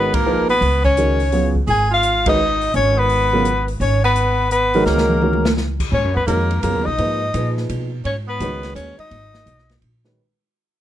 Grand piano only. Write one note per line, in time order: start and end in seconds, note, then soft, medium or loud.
0.00 0.12 D#3 soft
0.00 0.12 G#3 soft
0.00 0.12 C#4 soft
0.00 0.12 F#4 soft
0.00 0.12 A#4 medium
0.26 0.47 F3 medium
0.26 0.47 A#3 medium
0.26 0.47 D#4 soft
0.26 0.47 G#4 medium
0.26 0.47 B4 medium
0.98 1.18 D#3 soft
0.98 1.18 G#3 soft
0.98 1.18 C#4 soft
0.98 1.18 F#4 soft
0.98 1.18 A#4 soft
1.32 1.53 C#3 medium
1.32 1.53 F#3 soft
1.32 1.53 B3 soft
1.32 1.54 F4 soft
1.32 1.53 G#4 medium
2.27 2.38 D#3 medium
2.27 2.38 G#3 medium
2.27 2.38 C#4 medium
2.27 2.38 F#4 medium
2.27 2.38 B4 medium
3.33 3.44 C#3 medium
3.33 3.44 F#3 soft
3.33 3.44 B3 medium
3.33 3.44 F4 medium
3.33 3.44 A#4 medium
4.75 5.20 D#3 medium
4.75 5.20 G#3 medium
4.75 5.20 C#4 medium
4.75 5.20 F#4 medium
4.75 5.20 A#4 medium
5.22 5.42 D#3 soft
5.22 5.43 G#3 soft
5.22 5.43 C#4 soft
5.22 5.43 F#4 medium
5.22 5.43 A#4 medium
6.28 6.49 D#3 soft
6.28 6.49 G#3 soft
6.28 6.49 C#4 soft
6.28 6.49 F#4 soft
6.28 6.49 A#4 medium
6.63 6.84 C#3 soft
6.63 6.84 F#3 soft
6.63 6.84 B3 soft
6.63 6.84 F4 soft
6.63 6.84 G#4 medium
6.99 7.19 F3 soft
6.99 7.19 A#3 soft
6.99 7.19 D#4 soft
6.99 7.19 G#4 soft
6.99 7.20 B4 medium
7.34 7.88 A#2 soft
7.34 7.88 F3 medium
7.34 7.88 D#4 soft
7.34 7.88 G#4 soft
7.34 7.88 B4 medium
8.41 8.95 D#3 medium
8.41 8.94 G#3 soft
8.41 8.95 C#4 medium
8.41 8.95 F#4 medium
8.41 8.95 B4 medium
10.05 10.17 D#3 medium
10.05 10.17 G#3 soft
10.05 10.18 C#4 medium
10.05 10.18 F#4 soft
10.05 10.18 B4 medium